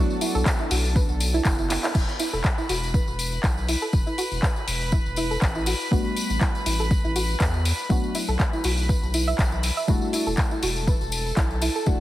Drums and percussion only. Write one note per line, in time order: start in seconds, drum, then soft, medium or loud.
0.10 tambourine soft
0.21 open hi-hat loud
0.21 tambourine medium
0.35 tambourine soft
0.46 kick loud
0.46 clap loud
0.46 tambourine medium
0.59 tambourine soft
0.71 open hi-hat loud
0.71 tambourine medium
0.85 tambourine soft
0.96 kick loud
0.96 tambourine medium
1.09 tambourine soft
1.20 open hi-hat loud
1.20 tambourine medium
1.34 tambourine soft
1.45 kick loud
1.45 clap loud
1.45 tambourine medium
1.58 tambourine soft
1.70 clap medium
1.70 open hi-hat loud
1.70 tambourine medium
1.83 clap loud
1.83 tambourine soft
1.95 kick loud
1.95 crash medium
1.95 tambourine soft
2.09 tambourine soft
2.19 open hi-hat loud
2.19 tambourine loud
2.34 tambourine soft
2.44 kick loud
2.44 clap loud
2.44 tambourine soft
2.58 tambourine soft
2.69 open hi-hat loud
2.69 tambourine medium
2.83 tambourine soft
2.94 kick loud
2.94 tambourine medium
3.08 tambourine soft
3.19 open hi-hat loud
3.19 tambourine medium
3.32 tambourine soft
3.43 kick loud
3.43 clap loud
3.43 tambourine medium
3.57 tambourine soft
3.68 open hi-hat loud
3.68 tambourine loud
3.81 tambourine soft
3.93 kick loud
3.93 tambourine soft
4.07 tambourine soft
4.18 open hi-hat loud
4.18 tambourine medium
4.31 tambourine soft
4.43 kick loud
4.43 clap loud
4.43 tambourine medium
4.56 tambourine soft
4.68 open hi-hat loud
4.68 tambourine medium
4.81 tambourine soft
4.92 kick loud
4.92 tambourine medium
5.06 tambourine soft
5.16 open hi-hat loud
5.16 tambourine medium
5.31 tambourine soft
5.42 kick loud
5.42 clap loud
5.42 tambourine medium
5.55 tambourine soft
5.66 open hi-hat loud
5.66 tambourine medium
5.80 tambourine soft
5.92 kick loud
5.92 tambourine soft
6.05 tambourine soft
6.16 open hi-hat loud
6.16 tambourine medium
6.30 tambourine soft
6.41 kick loud
6.41 clap loud
6.41 tambourine medium
6.55 tambourine soft
6.66 open hi-hat loud
6.66 tambourine medium
6.79 tambourine soft
6.91 kick loud
6.91 tambourine soft
7.05 tambourine soft
7.16 open hi-hat loud
7.16 tambourine medium
7.29 tambourine soft
7.40 kick loud
7.40 clap loud
7.40 tambourine medium
7.54 tambourine soft
7.65 open hi-hat loud
7.65 tambourine medium
7.79 tambourine soft
7.90 kick loud
7.90 tambourine medium
8.04 tambourine soft
8.15 open hi-hat loud
8.15 tambourine medium
8.28 tambourine soft
8.40 kick loud
8.40 clap loud
8.40 tambourine soft
8.53 tambourine soft
8.64 open hi-hat loud
8.64 tambourine medium
8.77 tambourine soft
8.89 kick loud
8.89 tambourine medium
9.03 tambourine soft
9.14 open hi-hat loud
9.14 tambourine medium
9.28 tambourine soft
9.39 kick loud
9.39 clap loud
9.39 tambourine medium
9.52 tambourine soft
9.63 open hi-hat loud
9.63 tambourine medium
9.77 tambourine soft
9.88 kick loud
9.88 tambourine soft
10.02 tambourine soft
10.13 open hi-hat loud
10.13 tambourine medium
10.27 tambourine soft
10.37 kick loud
10.37 clap loud
10.37 tambourine soft
10.51 tambourine soft
10.63 open hi-hat loud
10.63 tambourine medium
10.76 tambourine soft
10.87 kick loud
10.87 tambourine soft
11.01 tambourine soft
11.12 open hi-hat loud
11.12 tambourine medium
11.26 tambourine soft
11.37 kick loud
11.37 clap loud
11.37 tambourine medium
11.51 tambourine soft
11.62 open hi-hat loud
11.62 tambourine medium
11.75 tambourine soft
11.86 kick loud
11.86 tambourine soft